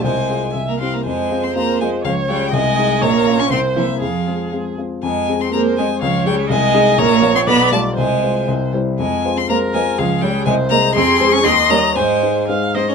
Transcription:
X:1
M:2/4
L:1/16
Q:1/4=120
K:Fm
V:1 name="Violin"
a4 z b c' b | a3 c' b2 a2 | f2 g2 a4 | b3 d' c'2 =e2 |
f4 z4 | a3 c' b2 a2 | f2 g2 a4 | b3 c' =b2 =a2 |
a4 z4 | a3 c' b2 a2 | f2 g2 a2 b2 | [K:Ab] c'3 d' c'2 b2 |
a4 z2 c d |]
V:2 name="Viola"
c4 =e2 f2 | c8 | d4 e4 | d4 c4 |
A6 z2 | z4 c4 | d4 e4 | d4 =d4 |
c6 z2 | z4 B4 | A4 c4 | [K:Ab] A4 e4 |
c4 f2 e2 |]
V:3 name="Grand piano"
C,,2 [CFA]2 C,,2 [C=EG]2 | F,,2 [CFA]2 [CFA]2 [CFA]2 | D,,2 [DFA]2 C,,2 [EA]2 | B,,,2 [B,DF]2 C,,2 [B,C=E]2 |
F,,2 [A,CF]2 [A,CF]2 [A,CF]2 | F,,2 [A,CA]2 [A,CA]2 [A,CA]2 | D,,2 [A,DA]2 C,,2 [A,EA]2 | B,,,2 [F,Fd]2 =B,,,2 [G,F=d]2 |
C,,2 [A,Fc]2 C,,2 [G,=Ec]2 | F,,2 [A,Fc]2 [A,Fc]2 [A,Fc]2 | D,,2 [A,Ad]2 C,,2 [A,Ae]2 | [K:Ab] F,,2 [A,Ac]2 E,,2 [G,Ed]2 |
A,,2 [A,Ec]2 [A,Ec]2 [A,Ec]2 |]
V:4 name="Cello"
A,4 z B, C B, | A,3 C B,2 A,2 | F,2 G,2 A,4 | B,3 D C2 =E,2 |
F,4 z4 | A,3 C B,2 A,2 | F,2 G,2 A,4 | B,3 C =B,2 =A,2 |
A,4 z4 | A,3 C B,2 A,2 | F,2 G,2 A,2 B,2 | [K:Ab] C3 D C2 B,2 |
A,4 z2 C D |]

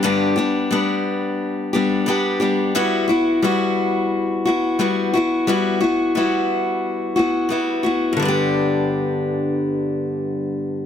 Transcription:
X:1
M:4/4
L:1/8
Q:1/4=88
K:G
V:1 name="Steel-string acoustic guitar"
[G,,D,G,B,DG] [G,B,DG] [G,B,DG]3 [G,B,DG] [G,B,DG] [G,B,DG] | [G,B,EF] [B,EF] [G,B,EF]3 [B,EF] [G,B,EF] [B,EF] | [G,B,EF] [B,EF] [G,B,EF]3 [B,EF] [G,B,EF] [B,EF] | [G,,D,G,B,DG]8 |]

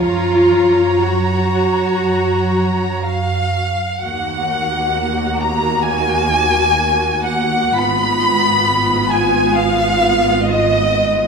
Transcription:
X:1
M:4/4
L:1/8
Q:1/4=65
K:F#
V:1 name="Violin section"
a6 e2 | [K:Ebm] g3 b a3 g | c'3 a f2 e2 |]
V:2 name="Violin section"
[ca]6 e2 | [K:Ebm] g3 b a3 g | c'3 a f2 e2 |]
V:3 name="Viola section"
E2 F4- F z | [K:Ebm] [B,G]8 | [CF]8 |]
V:4 name="Cello section" clef=bass
E,2 F,4- F, z | [K:Ebm] E,,8 | A,,8 |]
V:5 name="Double bass section" clef=bass
F,,8 | [K:Ebm] E,,8 | A,,,8 |]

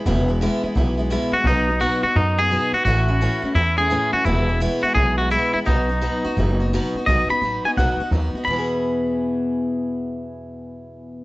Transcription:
X:1
M:4/4
L:1/8
Q:"Swing" 1/4=171
K:E
V:1 name="Clean electric guitar"
z6 z F | D2 F F D G2 F | F4 E G2 F | E2 z F G F E E |
D6 z2 | d b2 g f2 z2 | b8- | b8 |]
V:2 name="Steel-string acoustic guitar"
[E,,B,,E,G,B,E] [E,G,B,E] [E,,B,,E,G,B,E] [E,G,B,E] [E,G,B,E] [E,G,B,E] [E,,B,,E,G,B,E] [E,G,B,E] | [B,,F,B,DF] [B,DF] [B,,F,B,DF] [B,DF] [F,B,DF] [B,DF] [B,,F,B,DF] [B,DF] | [A,,E,A,CE] [A,CE] [A,,E,A,CE] [A,CE] [E,A,CE] [A,CE] [A,,E,A,CE] [A,CE] | [E,,B,,E,G,B,E] [E,G,B,E] [E,,B,,E,G,B,E] [E,G,B,E] [E,G,B,E] [E,G,B,E] [E,,B,,E,G,B,E] [E,G,B,E] |
[B,,F,B,DF] [B,DF] [B,,F,B,DF] [B,DF] [F,B,DF] [B,DF] [B,,F,B,DF] [B,DF] | [B,,F,B,DF] [B,DF] [F,B,DF] [B,DF] [B,,F,B,DF] [B,DF] [F,B,DF] [B,DF] | [E,,B,,E,B,EG]8- | [E,,B,,E,B,EG]8 |]
V:3 name="Upright bass" clef=bass
E,,,3 z B,,,3 z | B,,,3 z F,,3 z | A,,,3 z E,,3 z | E,,,3 z B,,,3 z |
B,,,3 z F,,,3 z | B,,, z A,,, z B,,, z D,, z | E,,8- | E,,8 |]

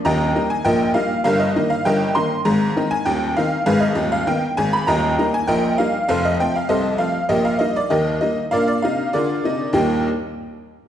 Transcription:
X:1
M:2/4
L:1/16
Q:1/4=99
K:Eb
V:1 name="Honky-tonk piano"
[egb]3 a [Beg]2 f2 | [Bf] e2 f [Beg]2 c'2 | b3 a g2 f2 | [A_cf] e2 f g2 a _c' |
[egb]3 a [Beg]2 f2 | [=Acf] e g f [Ace]2 f2 | [GBe] f e d [GBe]2 e2 | [Bdf] d f2 [ABd]4 |
[E,,B,,G,B,EGg]2 z6 |]
V:2 name="Honky-tonk piano" clef=bass
[E,,,E,,]2 [G,B,E]2 [B,,,B,,]2 [G,B,E]2 | [G,,,G,,]2 [E,B,E]2 [G,,,G,,]2 [E,B,E]2 | [A,,,A,,]2 [E,CE]2 [E,,,E,,]2 [E,CE]2 | [A,,,A,,]2 [E,,,E,,]2 [E,_CE]2 [A,,,A,,]2 |
[E,,,E,,]2 [G,B,E]2 [B,,,B,,]2 [G,B,E]2 | [F,,,F,,]2 [F,=A,C]2 [C,,C,]2 [F,A,C]2 | [B,,,B,,]2 [G,B,E]2 [E,,E,]2 [G,B,E]2 | [B,,D]2 [C,E]2 [D,F]2 [C,E]2 |
z8 |]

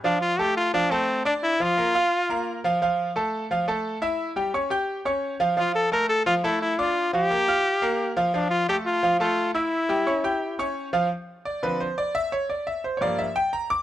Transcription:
X:1
M:4/4
L:1/8
Q:1/4=174
K:Dm
V:1 name="Grand piano"
[F,Ff]2 [A,Aa]2 [F,Ff] [A,Aa]2 [Ddd']- | [Ddd'] [F,Ff] [B,Bb] [Fff']2 [B,Bb]2 [F,Ff] | [F,Ff]2 [A,Aa]2 [F,Ff] [A,Aa]2 [Eee']- | [Eee'] [G,Gg] [^C^c^c'] [Ggg']2 [Ccc']2 [F,Ff] |
[F,Ff]2 [A,Aa]2 [F,Ff] [A,Aa]2 [Ddd']- | [Ddd'] [F,Ff] [B,Bb] [Fff']2 [B,Bb]2 [F,Ff] | [F,Ff]2 [A,Aa]2 [F,Ff] [A,Aa]2 [Eee']- | [Eee'] [G,Gg] [^C^c^c'] [Ggg']2 [Ccc']2 [F,Ff] |
z2 d [D,F,C=B] c d e ^c | d e c [G,,F,B,^cd] e g b d' |]
V:2 name="Trombone"
D F G F D C2 D | E F6 z | z8 | z8 |
F A B A F E E F- | F G6 z | D F G F2 F2 E- | E6 z2 |
z8 | z8 |]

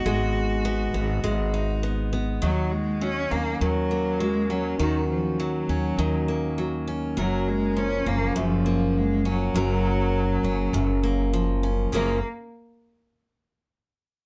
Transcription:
X:1
M:4/4
L:1/8
Q:"Swing 16ths" 1/4=101
K:F#
V:1 name="Steel-string acoustic guitar"
[G,B,D]2 B, B, G, D B, B, | [D,F]2 F, C D, A, F, C | [D,F]2 F, C D, A, F, C | [F,,A]2 E, C F,, A,2 C |
[F,,A]3 C F,, A, E, C | [F,,C,E,A,CA] z6 z |]
V:2 name="Cello" clef=bass
F6 z2 | F, G, C A, F,2 G, F, | D, E, F,4 z2 | F, G, C A, E,2 G, F,- |
F,6 z2 | A, z6 z |]
V:3 name="Upright bass" clef=bass
G,,,3 G,,, G,,,4 | D,,3 D,, D,,4 | D,,3 D,, D,,4 | F,,,3 F,,, F,,,4 |
F,,,3 F,,, F,,,4 | F,,, z6 z |]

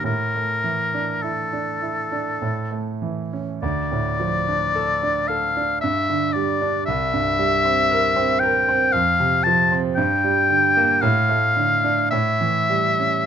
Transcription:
X:1
M:3/4
L:1/16
Q:1/4=55
K:Dm
V:1 name="Oboe"
B4 A6 z2 | d6 f2 e2 d2 | e6 g2 f2 a2 | g4 f4 e4 |]
V:2 name="Grand piano" clef=bass
A,, A, E, D E D E D A,, A, E, ^C | D,, A,, F, D A D A D G,, D, G, D | C,, G,, G, C B C B C F,, C, F, C | G,, G, D, B, A,, A, D, D A,, E, G, ^C |]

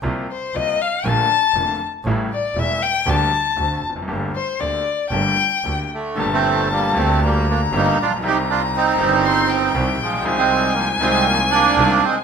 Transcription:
X:1
M:4/4
L:1/16
Q:1/4=118
K:Gm
V:1 name="Violin"
z2 c2 e2 f2 a6 z2 | z2 d2 =e2 g2 a6 z2 | z2 c2 d4 g6 z2 | a8 b8 |
b8 c'2 g6 | _a16 |]
V:2 name="Bandoneon"
z16 | z16 | z12 z2 [D,A,]2- | [D,A,] [A,C]3 [G,B,]2 [A,C]2 [G,B,]2 [B,D]2 [B,E]2 [DF]2 |
[EG]2 [DF]2 [CE]8 z2 [F,_A,]2- | [F,_A,] [A,C]3 [F,B,]2 [A,C]2 [F,B,]2 [B,D]4 [A,C]2 |]
V:3 name="Grand piano" clef=bass
[C,,C,F,B,F]2 z2 [C,,C,F,B,F]2 z2 [B,,,B,,D,A,B,F]2 z2 [F,,,F,,D,A,B,F]2 z2 | [A,,,A,,^C,G,A,=E]2 z2 [=E,,,=E,,C,G,A,E]2 z2 [D,,D,G,B,G]2 z2 [D,,D,A,=C^F]2 z/2 E,,/2 =F,,/2 ^F,,/2 | [G,,,G,,D,A,B,G]2 z2 [D,,D,A,B,G]2 z2 [G,,,G,,D,A,B,G]2 z2 [D,,D,A,B,G]2 z2 | [G,,,G,,B,,D,A,G]6 [D,,D,A,B,G]6 [G,,,G,,D,A,B,G]2 z/2 A,,,/2 B,,,/2 =B,,,/2 |
[C,,C,E,G,CG]6 [G,,,G,,E,G,CG]6 [C,,C,E,G,CG]2 z/2 A,,,/2 B,,,/2 =B,,,/2 | [C,,C,E,_A,CF]6 [C,,C,E,A,CF]6 [C,,C,E,A,CF]2 z2 |]
V:4 name="Double bass" clef=bass
C,,2 z2 C,,2 z2 B,,,2 z2 F,,,2 z2 | A,,,2 z2 =E,,,2 z2 D,,2 z2 D,,2 F,,,2 | G,,,2 z2 D,,2 z2 G,,,2 z2 D,,2 z2 | G,,,6 D,,6 G,,,2 B,,,2 |
C,,6 G,,,6 C,,2 B,,,2 | C,,6 C,,6 C,,2 z2 |]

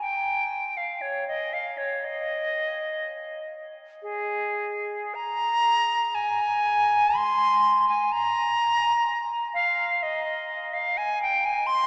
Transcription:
X:1
M:4/4
L:1/16
Q:1/4=61
K:Ab
V:1 name="Flute"
g3 f d e f d e6- e z | A4 b4 a4 c'3 a | b6 f2 e3 f a g a c' |]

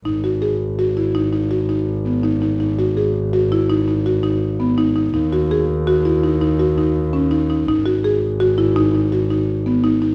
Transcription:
X:1
M:7/4
L:1/8
Q:1/4=166
K:G#m
V:1 name="Marimba"
D F G2 F E D D F D2 B, D D | D F G2 F E D D F D2 B, D D | D F G2 F E D D F D2 C D D | D F G2 F E D D F D2 B, D D |]
V:2 name="Double bass" clef=bass
G,,,12- G,,,2- | G,,,12- G,,,2 | D,,12- D,,2 | G,,,12- G,,,2 |]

